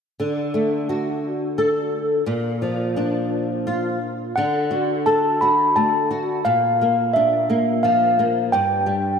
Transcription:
0.20 2.23 D3 soft
0.54 1.88 A3 soft
0.89 2.23 F#4 soft
1.58 2.25 A4 soft
2.26 4.32 A#2 medium
2.62 3.97 F3 soft
2.96 4.32 D4 medium
3.67 4.34 F4 soft
4.36 6.42 D3 medium
4.36 5.02 F#5 medium
4.71 5.41 F#4 soft
5.06 6.41 A4 soft
5.06 5.39 A5 medium
5.41 6.09 F#4 soft
5.41 5.73 B5 medium
5.76 6.43 A3 soft
5.76 6.48 A5 medium
6.11 6.44 F#4 soft
6.45 8.48 A#2 medium
6.45 7.10 F5 medium
6.81 7.48 A#3 soft
7.13 8.49 D4 soft
7.13 7.85 E5 medium
7.50 8.18 A#3 medium
7.83 8.51 F3 soft
7.83 8.31 F5 medium
8.19 8.52 A#3 soft
8.52 9.19 G2 medium
8.52 9.19 G5 medium
8.86 9.19 G3 soft

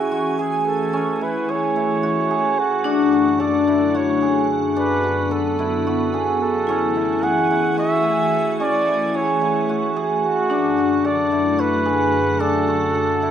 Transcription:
0.00 2.82 E3 medium
0.00 4.73 A3 medium
0.00 0.93 C#4 medium
0.00 2.97 C#4 medium
0.00 1.21 E4 medium
0.00 0.11 F#4 medium
0.00 0.41 F#4 medium
0.00 10.46 F#4 medium
0.00 0.39 G#4 medium
0.00 2.82 G#5 medium
0.11 2.03 F#4 medium
0.39 1.48 G#4 medium
0.39 0.66 G#4 medium
0.67 1.25 A4 medium
0.93 2.91 C#4 medium
1.21 1.76 E4 medium
1.21 1.52 B4 medium
1.49 2.30 G#4 medium
1.49 2.61 C#5 medium
1.76 3.67 E4 medium
2.03 3.12 F#4 medium
2.31 3.46 G#4 medium
2.59 3.42 F#4 medium
2.84 6.64 F#2 medium
2.84 6.64 D3 medium
2.84 6.36 D4 loud
2.84 4.76 D4 medium
3.12 3.94 F#4 medium
3.40 4.28 A4 medium
3.40 3.97 D5 medium
3.67 5.59 E4 medium
3.95 5.03 F#4 medium
3.95 4.51 C#5 medium
4.22 5.37 G#4 medium
4.76 6.67 B3 medium
4.76 6.75 D4 medium
4.76 5.34 B4 medium
5.03 5.86 F#4 medium
5.31 6.20 A4 medium
5.31 6.41 A4 medium
5.59 6.95 E4 medium
5.87 7.77 F#4 medium
6.14 7.23 G#4 medium
6.42 7.25 A4 medium
6.67 10.46 E3 medium
6.67 10.47 A3 medium
6.67 8.60 C#4 medium
6.67 10.61 E4 medium
6.67 10.46 G#5 medium
6.96 7.50 E4 medium
7.23 8.05 G#4 medium
7.23 7.78 F#5 medium
7.51 8.87 E4 medium
7.78 9.69 F#4 medium
7.78 8.56 E5 loud
8.05 9.14 G#4 medium
8.60 10.57 C#4 medium
8.60 9.17 D5 medium
8.87 9.41 E4 medium
9.14 9.96 G#4 medium
9.14 9.97 C#5 medium
9.41 11.31 E4 medium
9.69 10.78 F#4 medium
9.96 11.11 G#4 medium
10.25 11.07 F#4 medium
10.50 13.31 F#2 medium
10.50 13.31 D3 medium
10.50 13.31 A3 medium
10.50 13.31 D4 medium
10.50 12.40 D4 medium
10.50 13.31 F#4 medium
10.78 11.58 F#4 medium
11.05 11.92 A4 medium
11.05 11.61 D5 medium
11.32 13.22 E4 medium
11.59 12.67 F#4 medium
11.59 12.42 B4 loud
11.86 13.01 G#4 medium
12.40 13.31 D4 medium
12.40 13.31 A4 medium
12.68 13.31 F#4 medium
12.95 13.31 A4 medium
13.22 13.31 E4 medium

